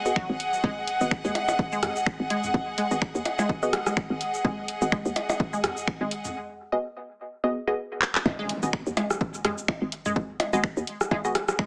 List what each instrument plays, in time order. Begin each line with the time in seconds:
Already playing: string section G#4 D#5 F#5
0.06 synth stab B3 F#4 G#4 D#5, cabasa
0.16 synth pluck F#3, finger snap, kick
0.30 fm bass G#1
0.40 closed hi-hat
0.53 cabasa
0.64 fm bass G#1, synth pluck G#3, kick
0.88 closed hi-hat
1.01 fm bass G#1, synth stab B3 F#4 G#4 D#5, cabasa
1.11 finger snap, kick
1.25 fm bass D#2, synth pluck G#3, cabasa
1.35 closed hi-hat, percussion blips
1.48 cabasa, percussion blips
1.59 kick
1.72 synth pluck G#3, cabasa
1.83 cross-stick, closed hi-hat, mid tom
1.96 cabasa
2.06 finger snap, kick
2.20 fm bass G#1
2.30 synth pluck G#3, closed hi-hat
2.44 mid tom, cabasa
2.54 fm bass G#1, kick
2.78 synth pluck G#3, closed hi-hat
2.91 fm bass G#1, synth stab B3 F#4 G#4 D#5, cabasa
3.02 finger snap, kick
3.15 fm bass D#2, cabasa
3.25 closed hi-hat, percussion blips
3.39 synth pluck G#3, cabasa, percussion blips
3.49 kick
3.63 synth stab B3 F#4 G#4 D#5, cabasa
3.73 cross-stick, closed hi-hat
3.86 synth pluck G#3, cross-stick, cabasa
3.97 finger snap, kick
4.10 fm bass G#1
4.21 closed hi-hat
4.34 cabasa
4.45 fm bass G#1, synth pluck G#3, kick
4.68 closed hi-hat
4.82 fm bass G#1, synth stab B3 F#4 G#4 D#5, cabasa
4.92 synth pluck G#3, finger snap, kick
5.06 fm bass D#2, cabasa
5.16 closed hi-hat, percussion blips
5.29 cabasa, percussion blips
5.40 kick
5.53 synth pluck G#3, cabasa
5.64 cross-stick, closed hi-hat, mid tom
5.77 cabasa
5.87 finger snap, kick
6.01 fm bass G#1, synth pluck G#3
6.11 closed hi-hat
6.25 mid tom, cabasa
6.72 synth stab B3 F#4 G#4 D#5
7.44 synth stab B3 F#4 G#4 D#5
7.67 synth stab B3 F#4 G#4 D#5
8.02 clap
8.15 clap
8.26 fm bass G#1, kick, impact, percussion blips
8.39 synth pluck G#3
8.49 closed hi-hat
8.63 fm bass G#1, synth stab B3 F#4 G#4 D#5, cabasa
8.73 finger snap, kick
8.87 fm bass D#2, cabasa
8.97 synth pluck G#3, closed hi-hat, percussion blips
9.10 cross-stick, cabasa
9.21 kick
9.34 cabasa
9.45 synth pluck G#3, cross-stick, closed hi-hat, mid tom
9.58 cabasa
9.68 finger snap, kick, percussion blips
9.82 fm bass G#1
9.92 closed hi-hat
10.06 synth pluck G#3, mid tom, cabasa
10.16 fm bass G#1, kick
10.40 closed hi-hat, percussion blips
10.53 fm bass G#1, synth pluck G#3, synth stab B3 F#4 G#4 D#5, cabasa
10.64 finger snap, kick
10.77 fm bass D#2, cabasa
10.87 closed hi-hat
11.01 cross-stick, cabasa
11.11 synth pluck G#3, kick, percussion blips
11.25 synth stab B3 F#4 G#4 D#5, cabasa
11.35 cross-stick, closed hi-hat
11.48 cross-stick, cabasa
11.59 synth pluck G#3, finger snap, kick